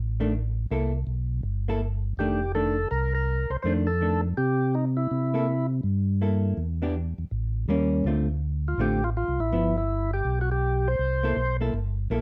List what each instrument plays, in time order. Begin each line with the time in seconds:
Already playing: tonewheel organ A1
0.20 hollow-body jazz guitar D#3 A3 D4
0.71 tonewheel organ C2, hollow-body jazz guitar A#3 E4 A4
1.07 tonewheel organ B1
1.43 tonewheel organ G1
1.68 hollow-body jazz guitar A#3 E4 A4
2.17 tonewheel organ F1 G4, hollow-body jazz guitar D#3 A3 D4
2.55 hollow-body jazz guitar D#3 A3 D4, tonewheel organ A4
2.91 tonewheel organ C2 A#4
3.15 tonewheel organ A#4
3.50 tonewheel organ C2 C5
3.62 tonewheel organ F2 C5, hollow-body jazz guitar D#3 A3
3.66 hollow-body jazz guitar D4
3.87 tonewheel organ A4
4.01 hollow-body jazz guitar D#3 A3 D4
4.37 tonewheel organ C3 G4
4.75 tonewheel organ D#4
4.97 tonewheel organ E4
5.11 tonewheel organ C3
5.34 hollow-body jazz guitar A#3 E4 A4
5.83 tonewheel organ G2
6.21 hollow-body jazz guitar A#3 E4 A4
6.57 tonewheel organ E2
6.82 hollow-body jazz guitar E3 B3 D4 G4
7.18 tonewheel organ E2
7.31 tonewheel organ A1
7.68 tonewheel organ D#2, hollow-body jazz guitar G3 A#3 C#4
8.04 tonewheel organ D2, hollow-body jazz guitar D3 A3 C4 F4
8.68 tonewheel organ F4
8.78 tonewheel organ A1 G4, hollow-body jazz guitar D3 A3 C4 F4
9.04 tonewheel organ F4
9.17 tonewheel organ F4
9.28 tonewheel organ C2
9.40 tonewheel organ A1 E4
9.52 tonewheel organ G1, hollow-body jazz guitar F3 B3 E4
9.78 tonewheel organ E4
10.13 tonewheel organ G4
10.25 tonewheel organ B1
10.41 tonewheel organ F#4
10.51 tonewheel organ G4
10.88 tonewheel organ C5
10.99 tonewheel organ C2
11.23 hollow-body jazz guitar A#3 E4 A4
11.36 tonewheel organ B1
11.61 hollow-body jazz guitar A#3 E4 A4
11.74 tonewheel organ G1
12.10 tonewheel organ A#1, hollow-body jazz guitar A#3 E4 A4